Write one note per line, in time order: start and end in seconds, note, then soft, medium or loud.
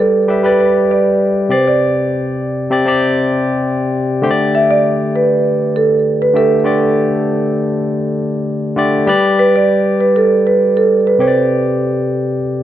0.00 0.22 G3 medium
0.00 0.23 G4 medium
0.00 0.47 A4 medium
0.00 0.23 B4 medium
0.00 0.24 D5 medium
0.28 0.42 G3 medium
0.28 0.43 G4 medium
0.28 0.44 B4 medium
0.28 0.44 E5 medium
0.43 1.49 G3 medium
0.43 1.49 G4 medium
0.43 1.50 B4 medium
0.43 0.52 B4 medium
0.43 1.50 D5 medium
0.61 0.91 B4 loud
0.91 1.53 D5 loud
1.49 2.63 C3 medium
1.49 2.63 C4 medium
1.49 2.64 G4 medium
1.49 1.67 C5 loud
1.49 2.64 D5 medium
1.68 3.59 D5 medium
2.70 2.85 C3 medium
2.70 2.86 C4 medium
2.70 2.86 G4 medium
2.70 2.87 D5 loud
2.86 3.99 C3 medium
2.86 4.00 C4 medium
2.86 4.00 G4 medium
2.86 4.01 D5 medium
4.22 5.36 D3 loud
4.22 5.36 A3 medium
4.22 5.37 G4 medium
4.22 4.30 C5 medium
4.31 5.40 D5 loud
4.55 4.70 E5 loud
4.71 5.16 D5 loud
5.16 5.77 B4 loud
5.76 6.23 A4 medium
6.22 6.36 B4 medium
6.34 6.63 D3 medium
6.34 6.63 A3 medium
6.34 6.64 G4 medium
6.34 8.74 A4 medium
6.34 6.64 E5 medium
6.64 7.78 D3 medium
6.64 7.78 A3 medium
6.64 7.79 G4 medium
6.64 7.79 D5 medium
8.76 9.05 D3 medium
8.76 9.06 A3 medium
8.76 9.06 G4 medium
8.76 9.06 D5 loud
9.07 10.21 G3 loud
9.07 10.21 G4 medium
9.07 10.21 B4 medium
9.07 10.22 D5 loud
9.39 9.55 B4 loud
9.56 9.97 D5 loud
10.01 10.14 B4 medium
10.16 10.46 A4 medium
10.47 10.74 B4 medium
10.77 11.07 A4 medium
11.07 11.21 B4 medium
11.19 12.33 C3 medium
11.19 12.33 C4 medium
11.19 12.34 G4 medium
11.19 12.38 C5 loud
11.19 11.27 C#5 medium
11.28 12.37 D5 medium